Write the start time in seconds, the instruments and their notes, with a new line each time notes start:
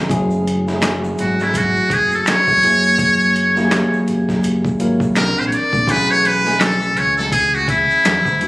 Already playing: tine electric piano D#3 B3 C#4 G#4
0.09 fingered electric bass F#1, tine electric piano F#3 A3 E4 G#4, kick, closed hi-hat, shaker
0.31 shaker
0.48 closed hi-hat
0.67 tine electric piano F#3 A3 E4 F#4, snare, shaker
0.76 tine electric piano G#4
0.82 finger snap, snare, clap, closed hi-hat, shaker
1.04 shaker
1.18 fingered electric bass G#1, muted trumpet F#4, closed hi-hat, shaker
1.40 muted trumpet E4, snare, shaker
1.54 muted trumpet F#4, kick, closed hi-hat, shaker
1.76 shaker
1.90 fingered electric bass F#1, muted trumpet G#4, kick, closed hi-hat, shaker
2.12 muted trumpet A4, shaker
2.26 muted trumpet C#5, finger snap, muted fingered electric bass stroke, snare, clap, closed hi-hat, shaker
2.47 fingered electric bass E1, kick, shaker
2.62 fingered electric bass F#1, tine electric piano F#3 A#3 E4 G#4, closed hi-hat, shaker
2.84 shaker
2.98 kick, closed hi-hat, shaker
3.21 shaker
3.36 closed hi-hat
3.56 tine electric piano F#3 A#3 E4 G4, snare, shaker
3.65 tine electric piano G#4
3.71 finger snap, snare, clap, closed hi-hat, shaker
3.93 shaker
4.08 fingered electric bass F#1, closed hi-hat, shaker
4.29 kick, snare, shaker
4.43 closed hi-hat, shaker
4.65 kick, shaker
4.79 fingered electric bass G#1, tine electric piano F#3 A#3 E4 A#4, closed hi-hat, shaker
5.00 kick, shaker
5.15 fingered electric bass C2, tine electric piano E3 C4 D4 A#4, muted trumpet A#4, finger snap, snare, clap, closed hi-hat, shaker
5.37 fingered electric bass A#1, muted trumpet C5, shaker
5.47 muted trumpet C#5
5.52 muted trumpet D5, closed hi-hat, shaker
5.73 fingered electric bass A#1, kick, shaker
5.87 fingered electric bass B1, tine electric piano E3 A3 C#4 G#4, muted trumpet B4, kick, closed hi-hat, shaker
6.09 muted trumpet C#5, shaker
6.25 muted trumpet B4, closed hi-hat
6.44 tine electric piano E3 A3 C#4 G#5, snare, shaker
6.60 muted trumpet A4, finger snap, snare, clap, closed hi-hat, shaker
6.82 shaker
6.96 fingered electric bass C#2, muted trumpet C#5, closed hi-hat, shaker
7.18 muted trumpet A4, snare, shaker
7.32 muted trumpet G#4, kick, closed hi-hat, shaker
7.54 muted trumpet F#4, shaker
7.68 muted trumpet E4, kick, closed hi-hat, shaker
7.91 shaker
8.05 fingered electric bass E2, finger snap, snare, clap, closed hi-hat, shaker
8.25 fingered electric bass D2, kick, shaker
8.41 tine electric piano E3 G#3 D4 F#4, closed hi-hat, shaker